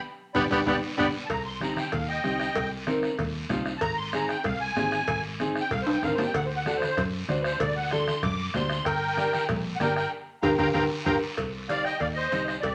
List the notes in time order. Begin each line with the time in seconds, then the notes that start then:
0.34 G1 B3 D4 G4 D5 G5 B5, bombo low, low conga, high timbale, long guiro
0.51 G1 B3 D4 G4 D5 G5 B5, bombo low, low conga, high timbale, long guiro
0.66 G1 B3 D4 G4 D5 G5 B5, bombo low, low conga, high timbale, long guiro
0.97 G1 B3 D4 G4 D5 G5 B5, bombo low, low conga, high timbale, long guiro
1.26 A5 A#5, cowbell
1.30 C2, bombo low, bombo rim, long guiro
1.46 C6
1.60 C4 D#4 G4 A#5, bombo rim, high conga, short guiro
1.76 G5, bombo rim, high conga, short guiro
1.92 D#2 F5, bombo low, bombo rim, cowbell, low conga, long guiro
2.08 D#5 G5
2.24 C2 C4 D#4 G4, bombo rim, high conga, short guiro
2.39 bombo rim, short guiro
2.55 C2, bombo low, bombo rim, cowbell, low conga, long guiro
2.87 C4 D#4 A#4, bombo rim, high conga, short guiro
3.03 bombo rim, short guiro
3.18 D#2, bombo low, bombo rim, cowbell, low conga, long guiro
3.49 C2 C4 D#4 F4, bombo low, bombo rim, high conga, low conga, low timbale, short guiro
3.65 bombo rim, short guiro
3.77 A5, bombo rim, cowbell, long guiro
3.81 G#1 A#5, bombo low
3.97 C6
4.12 C4 D#4 G#4 A#5, bombo rim, high conga, short guiro
4.28 G5, bombo rim, short guiro
4.44 C2 F5, bombo low, bombo rim, cowbell, low conga, long guiro
4.60 G#5
4.75 G#1 C4 D#4 G#4, bombo rim, high conga, low timbale, short guiro
4.91 bombo rim, short guiro
5.07 G#1, bombo low, bombo rim, cowbell, low conga, long guiro
5.39 C4 D#4 G#4, bombo rim, high conga, short guiro
5.56 bombo rim, short guiro
5.61 G5
5.71 C2 F5, bombo low, bombo rim, cowbell, low conga, long guiro
5.82 C5
5.87 high timbale
5.92 G5
6.03 G#1 C4 D#4 A#4 F5, bombo low, bombo rim, high conga, high timbale, short guiro
6.14 C5
6.18 bombo rim, low timbale, short guiro
6.24 G5
6.34 D2 F#5, bombo low, bombo rim, cowbell, long guiro
6.45 C5
6.56 F#5
6.66 D4 F#4 A4 F#5, bombo rim, high conga, short guiro
6.77 C5
6.82 B4, bombo rim, high conga, short guiro
6.87 C5
6.97 F#2, bombo low, bombo rim, cowbell, low conga, long guiro
7.28 D2 D4 F#4 C5, bombo rim, high conga, short guiro
7.41 B4, bombo rim
7.45 C5, short guiro
7.60 D2 D5, bombo low, bombo rim, cowbell, low conga, long guiro
7.76 F#5
7.91 D4 F#4 A4 C6, bombo rim, high conga, short guiro
8.07 bombo rim, high conga, short guiro
8.23 F#2 D6, bombo low, bombo rim, cowbell, low conga, long guiro
8.54 D2 D4 F#4 C5 C6, bombo rim, high conga, low conga, low timbale, short guiro
8.70 bombo rim, short guiro
8.84 G1 A#4 G5, bombo low, bombo rim, cowbell, long guiro
9.17 D4 G4 A#4, bombo rim, high conga, short guiro
9.33 bombo rim, high conga, short guiro
9.49 A#1, bombo low, bombo rim, cowbell, low conga, long guiro
9.76 G1 A#4 F#5
9.80 D4 G4 A#4 G5, bombo rim, high conga, low timbale, short guiro
9.96 A#4 G5, bombo rim, short guiro
10.42 G1 F4 G4 A#4 F5 G5 A#5, bombo low, high conga, high timbale, long guiro
10.58 G1 F4 G4 A#4 F5 G5 A#5, bombo low, high conga, high timbale, long guiro
10.73 G1 F4 G4 A#4 F5 G5 A#5, bombo low, high conga, high timbale, long guiro
11.05 G1 F4 G4 A#4 F5 G5 A#5, bombo low, high conga, high timbale, long guiro
11.37 C2, bombo low, bombo rim, cowbell, long guiro
11.69 D#4 G4 C5 D5 F5, bombo rim, cowbell, high conga, short guiro
11.84 D#5 G5, bombo rim, short guiro
11.99 D#2 D5 F5, bombo low, bombo rim, cowbell, long guiro
12.14 C5 D#5
12.32 C2 D#4 G4 C5, bombo rim, cowbell, high conga, short guiro
12.45 C5 D#5, bombo rim, short guiro
12.60 C2 G4 D5, bombo low, bombo rim, cowbell, long guiro
12.65 high conga